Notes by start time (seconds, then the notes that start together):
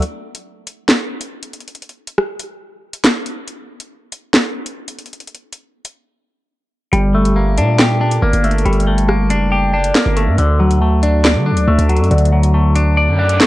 0.02 closed hi-hat
0.35 closed hi-hat
0.67 closed hi-hat
0.89 snare, clap
1.21 closed hi-hat
1.43 closed hi-hat
1.53 closed hi-hat
1.61 closed hi-hat
1.68 closed hi-hat
1.75 closed hi-hat
1.82 closed hi-hat
1.89 closed hi-hat
2.07 closed hi-hat
2.18 cross-stick
2.39 closed hi-hat
2.93 closed hi-hat
3.04 snare, clap, closed hi-hat
3.26 closed hi-hat
3.48 closed hi-hat
3.80 closed hi-hat
4.12 closed hi-hat
4.34 snare, clap
4.66 closed hi-hat
4.88 closed hi-hat
4.99 closed hi-hat
5.06 closed hi-hat
5.13 closed hi-hat
5.20 closed hi-hat
5.27 closed hi-hat
5.35 closed hi-hat
5.53 closed hi-hat
5.85 closed hi-hat
6.93 G1 G3, closed hi-hat
7.15 A3
7.25 closed hi-hat
7.36 A#3
7.58 A#2 D4, closed hi-hat
7.79 G4, snare, clap
8.01 D4
8.11 closed hi-hat
8.22 G1 A#3
8.33 G1, closed hi-hat
8.44 A3, closed hi-hat
8.51 closed hi-hat
8.58 closed hi-hat
8.65 G1 G3, closed hi-hat
8.73 closed hi-hat
8.80 closed hi-hat
8.87 A3
8.98 closed hi-hat
9.08 A#3, cross-stick
9.30 F#1 D4, closed hi-hat
9.52 G4
9.74 D4
9.84 closed hi-hat
9.95 A#3, snare, clap, closed hi-hat
10.06 G1
10.17 A3, closed hi-hat
10.27 G2
10.38 D2 D3, closed hi-hat
10.60 F#3
10.71 closed hi-hat
10.82 A3
11.03 D4, closed hi-hat
11.25 D5, snare, clap
11.35 D3
11.46 D4
11.52 D2
11.57 closed hi-hat
11.68 D2 A3
11.78 D2, closed hi-hat
11.89 F#3, closed hi-hat
11.97 F#2, closed hi-hat
12.04 closed hi-hat
12.11 D2 D3, closed hi-hat
12.18 closed hi-hat
12.25 closed hi-hat
12.32 F#3
12.43 closed hi-hat
12.54 A3
12.76 D4, closed hi-hat
12.97 D5, reverse cymbal
13.08 F#2
13.19 D4
13.29 closed hi-hat
13.40 A3, snare, clap, closed hi-hat